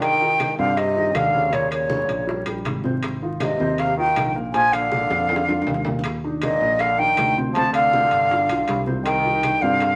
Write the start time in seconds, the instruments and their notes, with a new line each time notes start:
0.01 trombone D#3, flute G5, high bongo, high timbale, claves
0.21 grand piano D#3 D#4 G4, high conga
0.40 high bongo, high conga, high timbale, claves
0.58 fingered electric bass G2, grand piano C3 C4 C5, trombone D3, flute F5, high conga
0.77 trombone C3, flute D#5, high bongo, high conga, high timbale
0.96 grand piano D#3 D#4 G4, high conga
1.14 fingered electric bass D#2, trombone D3, flute F5, high bongo, low bongo, high conga, high timbale, low timbale, claves
1.34 grand piano C#3 C#4 C#5, high conga
1.52 trombone A#2, grand piano C#3 C#4 C#5, flute C#5, high bongo, high conga, high timbale
1.71 trombone A#2, flute C#5, high bongo, high conga, high timbale, claves
1.90 grand piano C#3 C#4 C#5, high bongo, high conga
2.09 fingered electric bass A#1, high conga, high timbale
2.27 grand piano G3 G4 A#4, high bongo, high conga
2.46 fingered electric bass A#1, grand piano G3 G4 A#4, high bongo, high conga, high timbale, claves
2.65 fingered electric bass G#1, high bongo, low bongo, high conga, high timbale
2.84 grand piano C3 C4 C5, high bongo, high conga
3.03 high bongo, high conga, high timbale, claves
3.21 grand piano D#3 D#4 F4, high conga
3.40 trombone C3, flute D#5, high bongo, high conga, high timbale, claves
3.59 fingered electric bass D#2, grand piano C3 C4 C5, high conga
3.78 trombone C3, flute F5, high bongo, high conga, high timbale
3.97 trombone D#3, grand piano D#3 D#4 F4, flute G5, high conga
4.16 fingered electric bass A#1, high bongo, low bongo, high conga, high timbale, low timbale, claves
4.35 grand piano A#2 A#3 A#4
4.54 grand piano A#2 A#3 A#4, trombone F3, flute G#5, high bongo, high conga, high timbale
4.73 trombone D3, flute F5, high bongo, high conga, high timbale, claves
4.92 grand piano A#2 A#3 A#4, high bongo, high conga
5.10 fingered electric bass F2, high bongo, high conga, high timbale
5.29 grand piano D3 D4 F4, high conga, low timbale
5.36 high bongo
5.48 grand piano D3 D4 F4, low bongo, high conga, claves
5.62 low bongo
5.67 fingered electric bass D#2, high conga, low timbale
5.74 low bongo
5.85 grand piano A#2 A#3 A#4, low bongo, high conga, low timbale
5.99 low bongo
6.04 high bongo, high conga, high timbale, claves
6.24 grand piano D#3 D4 D#4, high conga
6.42 trombone A#2, flute D#5, high bongo, high conga, high timbale, claves
6.61 fingered electric bass A#1, grand piano A#2 A#3 A#4, high conga
6.79 trombone D3, flute F5, high bongo, high conga, high timbale
6.99 trombone D#3, grand piano D#3 D4 D#4, flute G5, high conga
7.17 fingered electric bass D2, high bongo, low bongo, high conga, high timbale, claves
7.37 grand piano C3 C4 C5, high conga
7.53 grand piano C3 C4 C5, trombone F3, flute A5, high bongo, high conga, high timbale
7.73 trombone D3, flute F5, high bongo, high conga, high timbale, claves
7.93 grand piano C3 C4 C5, high bongo, high conga
8.11 fingered electric bass G1, high conga, high timbale
8.30 grand piano D3 D4 F4, high bongo, high conga
8.49 fingered electric bass B1, grand piano D3 D4 F4, high bongo, high conga, high timbale, claves
8.68 fingered electric bass C2, high bongo, low bongo, high conga, high timbale
8.87 grand piano C3 C4 C5, high bongo, high conga
9.04 trombone D#3, flute G5, high bongo, high conga, high timbale, claves
9.24 grand piano D#3 D#4 G4, high conga
9.43 high bongo, high conga, high timbale, claves
9.60 fingered electric bass G2, grand piano C3 C4, trombone D3, flute F5, high conga
9.64 grand piano C5
9.80 high bongo, high conga, high timbale